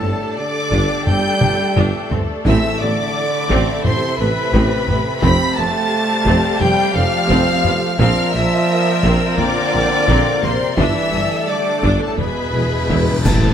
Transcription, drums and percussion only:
0.72 taiko medium
1.07 taiko low-mid medium
1.41 taiko mid medium
1.77 taiko low-mid loud
2.12 taiko low medium
2.46 taiko loud
3.50 taiko medium
3.85 taiko low-mid medium
4.53 taiko medium
4.88 taiko low-mid medium
5.22 taiko loud
6.26 taiko medium
6.61 taiko low-mid medium
7.30 taiko medium
7.65 taiko low-mid medium
7.99 taiko loud
9.03 taiko medium
9.38 taiko low-mid medium
10.08 taiko loud
10.43 taiko low-mid medium
10.78 taiko loud
11.83 taiko medium
12.18 taiko low-mid medium
12.90 taiko medium
13.25 concert bass drum medium
13.25 taiko loud
13.25 crash medium

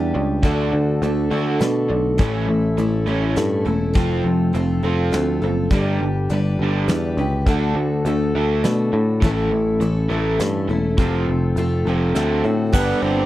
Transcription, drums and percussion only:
0.43 kick loud
0.43 closed hi-hat medium
1.03 closed hi-hat medium
1.61 snare medium
1.61 closed hi-hat medium
2.19 kick loud
2.19 closed hi-hat medium
2.78 closed hi-hat medium
3.36 snare medium
3.36 closed hi-hat medium
3.95 kick loud
3.95 closed hi-hat medium
4.55 closed hi-hat medium
5.13 snare medium
5.13 closed hi-hat medium
5.71 kick loud
5.71 closed hi-hat medium
6.30 closed hi-hat medium
6.88 snare medium
6.88 closed hi-hat medium
7.47 kick medium
7.47 closed hi-hat medium
8.05 closed hi-hat medium
8.64 snare medium
8.64 closed hi-hat medium
9.22 kick loud
9.22 closed hi-hat medium
9.81 closed hi-hat medium
10.39 snare medium
10.39 closed hi-hat medium
10.98 kick loud
10.98 closed hi-hat medium
11.56 closed hi-hat medium
12.15 snare medium
12.15 closed hi-hat medium
12.73 kick loud
12.73 crash loud

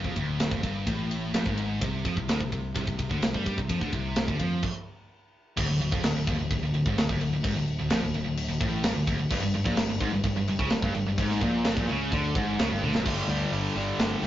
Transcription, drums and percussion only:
0.04 kick medium
0.16 kick medium
0.16 ride medium
0.40 snare loud
0.40 ride loud
0.51 kick loud
0.63 kick medium
0.63 ride medium
0.87 kick loud
0.87 ride medium
1.11 ride medium
1.34 snare loud
1.34 ride loud
1.46 kick loud
1.57 ride medium
1.81 kick loud
1.81 ride loud
2.05 kick medium
2.05 ride medium
2.17 kick medium
2.29 snare loud
2.29 ride medium
2.41 kick loud
2.52 kick medium
2.52 ride medium
2.75 kick loud
2.75 ride medium
2.87 kick medium
2.99 kick medium
2.99 ride medium
3.11 kick medium
3.22 snare loud
3.22 ride medium
3.34 kick loud
3.46 kick medium
3.46 ride medium
3.58 kick medium
3.69 kick loud
3.69 ride medium
3.81 kick medium
3.92 kick medium
3.92 ride medium
4.16 snare loud
4.16 ride medium
4.28 kick loud
4.39 kick medium
4.39 ride medium
4.63 kick loud
4.63 crash medium
5.57 kick loud
5.57 crash loud
5.57 crash medium
5.81 crash medium
5.92 kick loud
6.04 snare loud
6.04 crash medium
6.27 kick loud
6.27 crash medium
6.50 kick medium
6.50 crash medium
6.74 crash medium
6.86 kick loud
6.98 snare loud
6.98 crash medium
7.09 kick loud
7.21 crash medium
7.44 kick loud
7.44 crash medium
7.68 crash medium
7.90 snare loud
7.90 crash medium
8.14 crash medium
8.37 crash medium
8.61 kick loud
8.61 crash medium
8.84 snare loud
8.84 crash medium
9.07 kick loud
9.07 crash medium
9.30 kick loud
9.30 crash loud
9.54 crash medium
9.66 kick loud
9.77 snare loud
9.77 crash medium
10.00 kick loud
10.00 crash medium
10.23 kick medium
10.23 crash medium
10.48 crash medium
10.59 kick loud
10.70 snare loud
10.70 crash medium
10.82 kick loud
10.94 crash medium
11.18 kick loud
11.18 crash medium
11.31 snare soft
11.41 kick loud
11.41 crash medium
11.65 snare loud
11.65 crash medium
11.77 kick loud
11.89 crash medium
12.12 kick loud
12.12 crash medium
12.35 kick loud
12.35 crash medium
12.59 snare loud
12.59 crash medium
12.83 high tom medium
12.95 snare medium
13.06 kick loud
13.06 crash loud
13.29 open hi-hat medium
13.53 open hi-hat medium
13.76 open hi-hat medium
13.99 snare loud
13.99 open hi-hat medium
14.23 snare soft
14.23 open hi-hat medium

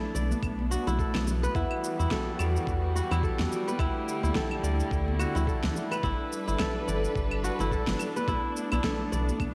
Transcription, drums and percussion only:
0.15 low conga medium
0.15 shaker medium
0.31 high conga medium
0.31 shaker soft
0.43 kick loud
0.43 claves medium
0.43 shaker soft
0.59 high conga medium
0.71 high conga medium
0.71 shaker medium
0.87 muted conga medium
0.87 low conga medium
0.87 shaker soft
0.99 kick loud
0.99 shaker soft
1.15 snare medium
1.15 muted conga soft
1.15 claves medium
1.27 low conga medium
1.27 shaker medium
1.44 shaker soft
1.55 kick loud
1.55 muted conga soft
1.55 shaker soft
1.71 claves medium
1.84 shaker medium
2.00 shaker soft
2.11 kick loud
2.11 snare medium
2.11 shaker soft
2.39 low conga medium
2.39 claves medium
2.39 shaker medium
2.56 shaker soft
2.67 kick loud
2.67 shaker soft
2.96 shaker medium
3.11 low conga medium
3.11 claves medium
3.11 shaker soft
3.23 kick loud
3.23 shaker soft
3.39 snare medium
3.39 high conga soft
3.52 muted conga soft
3.52 shaker medium
3.68 high conga medium
3.68 shaker soft
3.79 kick loud
3.79 muted conga medium
3.79 claves medium
3.79 shaker soft
4.08 shaker medium
4.23 high conga medium
4.23 shaker soft
4.35 kick medium
4.35 snare medium
4.35 shaker soft
4.51 claves medium
4.64 shaker medium
4.80 shaker soft
4.91 kick medium
4.91 shaker soft
5.08 high conga medium
5.20 high conga medium
5.20 claves medium
5.20 shaker medium
5.35 muted conga soft
5.35 low conga medium
5.35 shaker soft
5.47 kick medium
5.47 shaker soft
5.63 snare medium
5.63 muted conga soft
5.74 low conga medium
5.74 shaker medium
5.92 claves medium
5.92 shaker soft
6.03 kick loud
6.03 muted conga medium
6.03 shaker soft
6.32 shaker medium
6.48 shaker soft
6.59 kick loud
6.59 snare medium
6.59 claves medium
6.59 shaker soft
6.88 low conga medium
6.88 shaker medium
7.05 shaker soft
7.15 kick loud
7.15 shaker soft
7.31 claves medium
7.44 shaker medium
7.59 low conga medium
7.59 shaker soft
7.72 kick medium
7.72 shaker soft
7.87 snare medium
7.87 high conga soft
7.99 muted conga soft
7.99 claves medium
7.99 shaker medium
8.16 high conga medium
8.16 shaker soft
8.28 kick loud
8.28 muted conga medium
8.28 shaker soft
8.57 shaker medium
8.72 high conga medium
8.72 claves medium
8.72 shaker soft
8.84 kick medium
8.84 snare medium
8.84 shaker soft
9.13 low conga medium
9.13 shaker medium
9.29 high conga medium
9.29 shaker soft
9.40 kick medium
9.40 muted conga soft
9.40 claves medium
9.40 shaker soft

